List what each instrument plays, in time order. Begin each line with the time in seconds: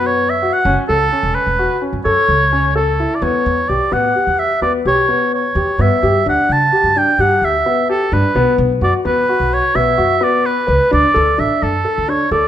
Already playing: upright bass F#2, grand piano B3
0.06 oboe C#5
0.30 oboe E5
0.42 grand piano F#4
0.53 oboe F#5
0.65 upright bass F#1, grand piano C#4
0.89 upright bass C#2, oboe A4, grand piano A4
1.12 grand piano C#4
1.23 upright bass E1
1.35 oboe B4
1.47 upright bass E1
1.59 grand piano F#4
1.82 grand piano C#4
1.93 upright bass F#2
2.05 upright bass F#2, grand piano A4, oboe C#5
2.28 upright bass C#2
2.52 grand piano C#4
2.76 grand piano A4, oboe A4
3.00 grand piano E4
3.15 oboe D5
3.22 upright bass E2, grand piano B3, oboe C#5
3.46 upright bass E2
3.69 upright bass B1, grand piano G4, oboe D5
3.92 upright bass A2, grand piano B3, oboe F#5
4.15 grand piano G4
4.27 upright bass E2
4.39 oboe E5
4.62 upright bass E2, grand piano B3, oboe D5
4.85 upright bass B1, grand piano G4, oboe C#5
5.09 grand piano B3
5.34 oboe C#5
5.55 upright bass E2, grand piano G4
5.78 upright bass G2, grand piano B3, oboe E5
6.03 upright bass G2, grand piano G4
6.26 upright bass D2, grand piano D4, oboe F#5
6.49 upright bass C#3, oboe A5
6.72 grand piano G4
6.84 upright bass G2
6.96 grand piano D4, oboe G5
7.18 upright bass G2, grand piano G4, oboe F#5
7.42 upright bass D2, oboe E5
7.66 grand piano B3
7.89 grand piano G4, oboe A4
8.12 upright bass G2, grand piano D4, oboe B4
8.35 upright bass B1, grand piano B3
8.58 upright bass B1
8.81 upright bass F#2, grand piano F#4, oboe D5
9.05 upright bass E2, grand piano B3, oboe B4
9.29 grand piano F#4
9.40 upright bass B1
9.53 oboe C#5
9.75 upright bass B1, grand piano B3, oboe E5
9.98 upright bass F#2, grand piano F#4
10.21 grand piano B3, oboe D5
10.46 oboe B4
10.67 upright bass C#2, grand piano B4
10.91 upright bass D2, grand piano D4, oboe D5
11.14 upright bass D2, grand piano A4
11.38 upright bass A1, grand piano D4, oboe E5
11.62 upright bass F#2, oboe A4
11.85 grand piano A4
11.98 upright bass D2
12.08 grand piano D4, oboe C#5
12.31 upright bass D2, grand piano A4, oboe D5